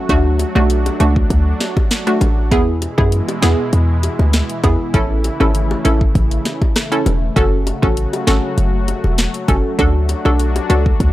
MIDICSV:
0, 0, Header, 1, 5, 480
1, 0, Start_track
1, 0, Key_signature, 3, "major"
1, 0, Tempo, 606061
1, 74, Time_signature, 4, 2, 24, 8
1, 8814, End_track
2, 0, Start_track
2, 0, Title_t, "Synth pluck"
2, 0, Program_c, 0, 84
2, 74, Note_on_c, 0, 57, 97
2, 75, Note_on_c, 0, 62, 89
2, 78, Note_on_c, 0, 66, 110
2, 241, Note_off_c, 0, 57, 0
2, 241, Note_off_c, 0, 62, 0
2, 243, Note_off_c, 0, 66, 0
2, 438, Note_on_c, 0, 57, 79
2, 441, Note_on_c, 0, 62, 75
2, 444, Note_on_c, 0, 66, 86
2, 597, Note_off_c, 0, 57, 0
2, 599, Note_off_c, 0, 62, 0
2, 600, Note_off_c, 0, 66, 0
2, 791, Note_on_c, 0, 57, 77
2, 794, Note_on_c, 0, 62, 73
2, 796, Note_on_c, 0, 66, 86
2, 959, Note_off_c, 0, 57, 0
2, 961, Note_off_c, 0, 62, 0
2, 962, Note_off_c, 0, 66, 0
2, 1638, Note_on_c, 0, 57, 80
2, 1640, Note_on_c, 0, 62, 74
2, 1642, Note_on_c, 0, 66, 87
2, 1797, Note_off_c, 0, 57, 0
2, 1798, Note_off_c, 0, 62, 0
2, 1799, Note_off_c, 0, 66, 0
2, 1991, Note_on_c, 0, 59, 100
2, 1993, Note_on_c, 0, 64, 95
2, 1995, Note_on_c, 0, 68, 112
2, 2159, Note_off_c, 0, 59, 0
2, 2160, Note_off_c, 0, 64, 0
2, 2161, Note_off_c, 0, 68, 0
2, 2358, Note_on_c, 0, 59, 82
2, 2360, Note_on_c, 0, 64, 71
2, 2363, Note_on_c, 0, 68, 86
2, 2517, Note_off_c, 0, 59, 0
2, 2518, Note_off_c, 0, 64, 0
2, 2520, Note_off_c, 0, 68, 0
2, 2710, Note_on_c, 0, 59, 78
2, 2712, Note_on_c, 0, 64, 71
2, 2715, Note_on_c, 0, 68, 84
2, 2879, Note_off_c, 0, 59, 0
2, 2880, Note_off_c, 0, 64, 0
2, 2881, Note_off_c, 0, 68, 0
2, 3671, Note_on_c, 0, 59, 81
2, 3674, Note_on_c, 0, 64, 70
2, 3676, Note_on_c, 0, 68, 83
2, 3894, Note_off_c, 0, 59, 0
2, 3896, Note_off_c, 0, 64, 0
2, 3897, Note_off_c, 0, 68, 0
2, 3911, Note_on_c, 0, 61, 99
2, 3913, Note_on_c, 0, 64, 92
2, 3916, Note_on_c, 0, 69, 108
2, 4079, Note_off_c, 0, 61, 0
2, 4081, Note_off_c, 0, 64, 0
2, 4082, Note_off_c, 0, 69, 0
2, 4277, Note_on_c, 0, 61, 80
2, 4281, Note_on_c, 0, 64, 72
2, 4282, Note_on_c, 0, 69, 88
2, 4437, Note_off_c, 0, 61, 0
2, 4438, Note_off_c, 0, 64, 0
2, 4439, Note_off_c, 0, 69, 0
2, 4630, Note_on_c, 0, 61, 76
2, 4633, Note_on_c, 0, 64, 69
2, 4635, Note_on_c, 0, 69, 87
2, 4799, Note_off_c, 0, 61, 0
2, 4800, Note_off_c, 0, 64, 0
2, 4801, Note_off_c, 0, 69, 0
2, 5478, Note_on_c, 0, 61, 81
2, 5481, Note_on_c, 0, 64, 75
2, 5483, Note_on_c, 0, 69, 90
2, 5637, Note_off_c, 0, 61, 0
2, 5638, Note_off_c, 0, 64, 0
2, 5640, Note_off_c, 0, 69, 0
2, 5830, Note_on_c, 0, 61, 99
2, 5833, Note_on_c, 0, 66, 93
2, 5835, Note_on_c, 0, 69, 113
2, 5999, Note_off_c, 0, 61, 0
2, 6000, Note_off_c, 0, 66, 0
2, 6001, Note_off_c, 0, 69, 0
2, 6197, Note_on_c, 0, 61, 78
2, 6199, Note_on_c, 0, 66, 72
2, 6201, Note_on_c, 0, 69, 90
2, 6357, Note_off_c, 0, 61, 0
2, 6358, Note_off_c, 0, 66, 0
2, 6359, Note_off_c, 0, 69, 0
2, 6550, Note_on_c, 0, 61, 78
2, 6553, Note_on_c, 0, 66, 71
2, 6555, Note_on_c, 0, 69, 84
2, 6719, Note_off_c, 0, 61, 0
2, 6720, Note_off_c, 0, 66, 0
2, 6721, Note_off_c, 0, 69, 0
2, 7510, Note_on_c, 0, 61, 79
2, 7513, Note_on_c, 0, 66, 70
2, 7515, Note_on_c, 0, 69, 86
2, 7734, Note_off_c, 0, 61, 0
2, 7735, Note_off_c, 0, 66, 0
2, 7736, Note_off_c, 0, 69, 0
2, 7751, Note_on_c, 0, 62, 97
2, 7753, Note_on_c, 0, 66, 92
2, 7755, Note_on_c, 0, 69, 109
2, 7919, Note_off_c, 0, 62, 0
2, 7920, Note_off_c, 0, 66, 0
2, 7921, Note_off_c, 0, 69, 0
2, 8118, Note_on_c, 0, 62, 78
2, 8121, Note_on_c, 0, 66, 69
2, 8124, Note_on_c, 0, 69, 86
2, 8277, Note_off_c, 0, 62, 0
2, 8279, Note_off_c, 0, 66, 0
2, 8280, Note_off_c, 0, 69, 0
2, 8471, Note_on_c, 0, 62, 78
2, 8473, Note_on_c, 0, 66, 72
2, 8475, Note_on_c, 0, 69, 87
2, 8639, Note_off_c, 0, 62, 0
2, 8640, Note_off_c, 0, 66, 0
2, 8642, Note_off_c, 0, 69, 0
2, 8814, End_track
3, 0, Start_track
3, 0, Title_t, "Analog synth pad"
3, 0, Program_c, 1, 89
3, 0, Note_on_c, 1, 54, 76
3, 0, Note_on_c, 1, 57, 76
3, 0, Note_on_c, 1, 66, 96
3, 75, Note_on_c, 1, 62, 85
3, 1962, Note_off_c, 1, 54, 0
3, 1962, Note_off_c, 1, 57, 0
3, 1962, Note_off_c, 1, 66, 0
3, 1975, Note_off_c, 1, 62, 0
3, 1994, Note_on_c, 1, 47, 88
3, 1994, Note_on_c, 1, 52, 79
3, 1994, Note_on_c, 1, 56, 78
3, 1994, Note_on_c, 1, 64, 93
3, 3895, Note_off_c, 1, 47, 0
3, 3895, Note_off_c, 1, 56, 0
3, 3916, Note_on_c, 1, 49, 88
3, 3916, Note_on_c, 1, 57, 79
3, 5802, Note_off_c, 1, 52, 0
3, 5802, Note_off_c, 1, 64, 0
3, 5816, Note_off_c, 1, 49, 0
3, 5833, Note_on_c, 1, 54, 78
3, 5834, Note_on_c, 1, 49, 86
3, 5834, Note_on_c, 1, 66, 99
3, 7735, Note_off_c, 1, 49, 0
3, 7735, Note_off_c, 1, 66, 0
3, 7755, Note_on_c, 1, 62, 85
3, 7755, Note_on_c, 1, 66, 95
3, 8814, Note_off_c, 1, 54, 0
3, 8814, Note_off_c, 1, 57, 0
3, 8814, Note_off_c, 1, 62, 0
3, 8814, Note_off_c, 1, 66, 0
3, 8814, End_track
4, 0, Start_track
4, 0, Title_t, "808-style bass"
4, 0, Program_c, 2, 38
4, 73, Note_on_c, 2, 38, 111
4, 356, Note_off_c, 2, 38, 0
4, 440, Note_on_c, 2, 35, 100
4, 712, Note_off_c, 2, 35, 0
4, 793, Note_on_c, 2, 37, 107
4, 978, Note_off_c, 2, 37, 0
4, 1032, Note_on_c, 2, 38, 105
4, 1217, Note_off_c, 2, 38, 0
4, 1754, Note_on_c, 2, 33, 97
4, 1993, Note_on_c, 2, 40, 107
4, 2005, Note_off_c, 2, 33, 0
4, 2276, Note_off_c, 2, 40, 0
4, 2361, Note_on_c, 2, 42, 97
4, 2545, Note_off_c, 2, 42, 0
4, 2714, Note_on_c, 2, 40, 98
4, 2812, Note_off_c, 2, 40, 0
4, 2953, Note_on_c, 2, 40, 111
4, 3235, Note_off_c, 2, 40, 0
4, 3320, Note_on_c, 2, 38, 96
4, 3505, Note_off_c, 2, 38, 0
4, 3673, Note_on_c, 2, 40, 93
4, 3771, Note_off_c, 2, 40, 0
4, 3913, Note_on_c, 2, 33, 109
4, 4196, Note_off_c, 2, 33, 0
4, 4280, Note_on_c, 2, 32, 95
4, 4552, Note_off_c, 2, 32, 0
4, 4634, Note_on_c, 2, 33, 88
4, 4818, Note_off_c, 2, 33, 0
4, 4873, Note_on_c, 2, 33, 107
4, 5058, Note_off_c, 2, 33, 0
4, 5593, Note_on_c, 2, 28, 91
4, 5778, Note_off_c, 2, 28, 0
4, 5833, Note_on_c, 2, 30, 114
4, 6116, Note_off_c, 2, 30, 0
4, 6202, Note_on_c, 2, 33, 90
4, 6386, Note_off_c, 2, 33, 0
4, 6553, Note_on_c, 2, 32, 100
4, 6651, Note_off_c, 2, 32, 0
4, 6792, Note_on_c, 2, 30, 110
4, 7075, Note_off_c, 2, 30, 0
4, 7161, Note_on_c, 2, 28, 89
4, 7345, Note_off_c, 2, 28, 0
4, 7513, Note_on_c, 2, 30, 96
4, 7611, Note_off_c, 2, 30, 0
4, 7753, Note_on_c, 2, 38, 109
4, 8036, Note_off_c, 2, 38, 0
4, 8121, Note_on_c, 2, 35, 97
4, 8392, Note_off_c, 2, 35, 0
4, 8473, Note_on_c, 2, 37, 104
4, 8658, Note_off_c, 2, 37, 0
4, 8713, Note_on_c, 2, 38, 106
4, 8814, Note_off_c, 2, 38, 0
4, 8814, End_track
5, 0, Start_track
5, 0, Title_t, "Drums"
5, 74, Note_on_c, 9, 36, 112
5, 74, Note_on_c, 9, 42, 70
5, 153, Note_off_c, 9, 36, 0
5, 153, Note_off_c, 9, 42, 0
5, 311, Note_on_c, 9, 60, 59
5, 313, Note_on_c, 9, 42, 89
5, 390, Note_off_c, 9, 60, 0
5, 392, Note_off_c, 9, 42, 0
5, 442, Note_on_c, 9, 60, 76
5, 521, Note_off_c, 9, 60, 0
5, 553, Note_on_c, 9, 42, 74
5, 633, Note_off_c, 9, 42, 0
5, 682, Note_on_c, 9, 60, 75
5, 683, Note_on_c, 9, 42, 58
5, 761, Note_off_c, 9, 60, 0
5, 762, Note_off_c, 9, 42, 0
5, 793, Note_on_c, 9, 42, 75
5, 794, Note_on_c, 9, 61, 72
5, 872, Note_off_c, 9, 42, 0
5, 873, Note_off_c, 9, 61, 0
5, 920, Note_on_c, 9, 36, 100
5, 1000, Note_off_c, 9, 36, 0
5, 1032, Note_on_c, 9, 36, 88
5, 1032, Note_on_c, 9, 42, 70
5, 1112, Note_off_c, 9, 36, 0
5, 1112, Note_off_c, 9, 42, 0
5, 1271, Note_on_c, 9, 38, 67
5, 1274, Note_on_c, 9, 42, 78
5, 1274, Note_on_c, 9, 60, 55
5, 1350, Note_off_c, 9, 38, 0
5, 1353, Note_off_c, 9, 42, 0
5, 1354, Note_off_c, 9, 60, 0
5, 1399, Note_on_c, 9, 36, 106
5, 1401, Note_on_c, 9, 60, 66
5, 1479, Note_off_c, 9, 36, 0
5, 1480, Note_off_c, 9, 60, 0
5, 1511, Note_on_c, 9, 42, 84
5, 1514, Note_on_c, 9, 38, 115
5, 1590, Note_off_c, 9, 42, 0
5, 1593, Note_off_c, 9, 38, 0
5, 1640, Note_on_c, 9, 42, 52
5, 1719, Note_off_c, 9, 42, 0
5, 1751, Note_on_c, 9, 60, 79
5, 1751, Note_on_c, 9, 61, 80
5, 1753, Note_on_c, 9, 42, 77
5, 1830, Note_off_c, 9, 60, 0
5, 1830, Note_off_c, 9, 61, 0
5, 1832, Note_off_c, 9, 42, 0
5, 1992, Note_on_c, 9, 42, 71
5, 1993, Note_on_c, 9, 36, 109
5, 2072, Note_off_c, 9, 36, 0
5, 2072, Note_off_c, 9, 42, 0
5, 2232, Note_on_c, 9, 60, 57
5, 2233, Note_on_c, 9, 42, 89
5, 2311, Note_off_c, 9, 60, 0
5, 2312, Note_off_c, 9, 42, 0
5, 2361, Note_on_c, 9, 36, 90
5, 2361, Note_on_c, 9, 60, 72
5, 2440, Note_off_c, 9, 36, 0
5, 2440, Note_off_c, 9, 60, 0
5, 2473, Note_on_c, 9, 42, 72
5, 2552, Note_off_c, 9, 42, 0
5, 2601, Note_on_c, 9, 60, 77
5, 2602, Note_on_c, 9, 42, 54
5, 2680, Note_off_c, 9, 60, 0
5, 2681, Note_off_c, 9, 42, 0
5, 2713, Note_on_c, 9, 38, 119
5, 2713, Note_on_c, 9, 42, 76
5, 2714, Note_on_c, 9, 61, 69
5, 2792, Note_off_c, 9, 38, 0
5, 2792, Note_off_c, 9, 42, 0
5, 2793, Note_off_c, 9, 61, 0
5, 2953, Note_on_c, 9, 42, 69
5, 3032, Note_off_c, 9, 42, 0
5, 3194, Note_on_c, 9, 42, 78
5, 3195, Note_on_c, 9, 60, 54
5, 3273, Note_off_c, 9, 42, 0
5, 3274, Note_off_c, 9, 60, 0
5, 3322, Note_on_c, 9, 60, 66
5, 3401, Note_off_c, 9, 60, 0
5, 3432, Note_on_c, 9, 42, 85
5, 3434, Note_on_c, 9, 38, 109
5, 3511, Note_off_c, 9, 42, 0
5, 3514, Note_off_c, 9, 38, 0
5, 3560, Note_on_c, 9, 42, 50
5, 3639, Note_off_c, 9, 42, 0
5, 3671, Note_on_c, 9, 60, 79
5, 3671, Note_on_c, 9, 61, 78
5, 3673, Note_on_c, 9, 36, 94
5, 3673, Note_on_c, 9, 42, 80
5, 3750, Note_off_c, 9, 60, 0
5, 3750, Note_off_c, 9, 61, 0
5, 3752, Note_off_c, 9, 36, 0
5, 3753, Note_off_c, 9, 42, 0
5, 3913, Note_on_c, 9, 42, 73
5, 3914, Note_on_c, 9, 36, 113
5, 3992, Note_off_c, 9, 42, 0
5, 3993, Note_off_c, 9, 36, 0
5, 4152, Note_on_c, 9, 60, 59
5, 4153, Note_on_c, 9, 42, 89
5, 4232, Note_off_c, 9, 42, 0
5, 4232, Note_off_c, 9, 60, 0
5, 4282, Note_on_c, 9, 60, 72
5, 4361, Note_off_c, 9, 60, 0
5, 4393, Note_on_c, 9, 42, 71
5, 4472, Note_off_c, 9, 42, 0
5, 4522, Note_on_c, 9, 60, 78
5, 4601, Note_off_c, 9, 60, 0
5, 4633, Note_on_c, 9, 42, 77
5, 4634, Note_on_c, 9, 61, 69
5, 4712, Note_off_c, 9, 42, 0
5, 4713, Note_off_c, 9, 61, 0
5, 4761, Note_on_c, 9, 36, 101
5, 4840, Note_off_c, 9, 36, 0
5, 4873, Note_on_c, 9, 36, 93
5, 4873, Note_on_c, 9, 42, 70
5, 4952, Note_off_c, 9, 36, 0
5, 4952, Note_off_c, 9, 42, 0
5, 5001, Note_on_c, 9, 42, 51
5, 5080, Note_off_c, 9, 42, 0
5, 5111, Note_on_c, 9, 38, 65
5, 5114, Note_on_c, 9, 42, 73
5, 5115, Note_on_c, 9, 60, 57
5, 5191, Note_off_c, 9, 38, 0
5, 5193, Note_off_c, 9, 42, 0
5, 5195, Note_off_c, 9, 60, 0
5, 5240, Note_on_c, 9, 36, 101
5, 5242, Note_on_c, 9, 60, 65
5, 5319, Note_off_c, 9, 36, 0
5, 5321, Note_off_c, 9, 60, 0
5, 5352, Note_on_c, 9, 42, 86
5, 5354, Note_on_c, 9, 37, 94
5, 5354, Note_on_c, 9, 38, 117
5, 5431, Note_off_c, 9, 42, 0
5, 5434, Note_off_c, 9, 37, 0
5, 5434, Note_off_c, 9, 38, 0
5, 5481, Note_on_c, 9, 42, 51
5, 5560, Note_off_c, 9, 42, 0
5, 5592, Note_on_c, 9, 60, 75
5, 5592, Note_on_c, 9, 61, 79
5, 5594, Note_on_c, 9, 42, 77
5, 5671, Note_off_c, 9, 60, 0
5, 5671, Note_off_c, 9, 61, 0
5, 5673, Note_off_c, 9, 42, 0
5, 5833, Note_on_c, 9, 42, 71
5, 5834, Note_on_c, 9, 36, 117
5, 5913, Note_off_c, 9, 36, 0
5, 5913, Note_off_c, 9, 42, 0
5, 6071, Note_on_c, 9, 60, 58
5, 6073, Note_on_c, 9, 42, 85
5, 6151, Note_off_c, 9, 60, 0
5, 6153, Note_off_c, 9, 42, 0
5, 6201, Note_on_c, 9, 60, 77
5, 6202, Note_on_c, 9, 36, 92
5, 6280, Note_off_c, 9, 60, 0
5, 6281, Note_off_c, 9, 36, 0
5, 6313, Note_on_c, 9, 42, 76
5, 6392, Note_off_c, 9, 42, 0
5, 6441, Note_on_c, 9, 60, 75
5, 6442, Note_on_c, 9, 42, 56
5, 6520, Note_off_c, 9, 60, 0
5, 6521, Note_off_c, 9, 42, 0
5, 6553, Note_on_c, 9, 38, 120
5, 6553, Note_on_c, 9, 42, 77
5, 6553, Note_on_c, 9, 61, 66
5, 6632, Note_off_c, 9, 42, 0
5, 6632, Note_off_c, 9, 61, 0
5, 6633, Note_off_c, 9, 38, 0
5, 6793, Note_on_c, 9, 42, 69
5, 6872, Note_off_c, 9, 42, 0
5, 7034, Note_on_c, 9, 42, 78
5, 7034, Note_on_c, 9, 60, 57
5, 7113, Note_off_c, 9, 42, 0
5, 7114, Note_off_c, 9, 60, 0
5, 7160, Note_on_c, 9, 60, 66
5, 7239, Note_off_c, 9, 60, 0
5, 7271, Note_on_c, 9, 42, 85
5, 7274, Note_on_c, 9, 38, 118
5, 7350, Note_off_c, 9, 42, 0
5, 7353, Note_off_c, 9, 38, 0
5, 7399, Note_on_c, 9, 42, 54
5, 7478, Note_off_c, 9, 42, 0
5, 7510, Note_on_c, 9, 60, 79
5, 7510, Note_on_c, 9, 61, 78
5, 7513, Note_on_c, 9, 36, 97
5, 7513, Note_on_c, 9, 42, 80
5, 7589, Note_off_c, 9, 60, 0
5, 7589, Note_off_c, 9, 61, 0
5, 7592, Note_off_c, 9, 36, 0
5, 7592, Note_off_c, 9, 42, 0
5, 7752, Note_on_c, 9, 42, 73
5, 7753, Note_on_c, 9, 36, 114
5, 7832, Note_off_c, 9, 36, 0
5, 7832, Note_off_c, 9, 42, 0
5, 7990, Note_on_c, 9, 60, 55
5, 7992, Note_on_c, 9, 42, 88
5, 8069, Note_off_c, 9, 60, 0
5, 8072, Note_off_c, 9, 42, 0
5, 8121, Note_on_c, 9, 60, 70
5, 8200, Note_off_c, 9, 60, 0
5, 8233, Note_on_c, 9, 42, 75
5, 8312, Note_off_c, 9, 42, 0
5, 8361, Note_on_c, 9, 60, 76
5, 8362, Note_on_c, 9, 42, 57
5, 8441, Note_off_c, 9, 42, 0
5, 8441, Note_off_c, 9, 60, 0
5, 8473, Note_on_c, 9, 42, 77
5, 8474, Note_on_c, 9, 61, 68
5, 8552, Note_off_c, 9, 42, 0
5, 8553, Note_off_c, 9, 61, 0
5, 8601, Note_on_c, 9, 36, 101
5, 8680, Note_off_c, 9, 36, 0
5, 8713, Note_on_c, 9, 36, 96
5, 8714, Note_on_c, 9, 42, 68
5, 8792, Note_off_c, 9, 36, 0
5, 8793, Note_off_c, 9, 42, 0
5, 8814, End_track
0, 0, End_of_file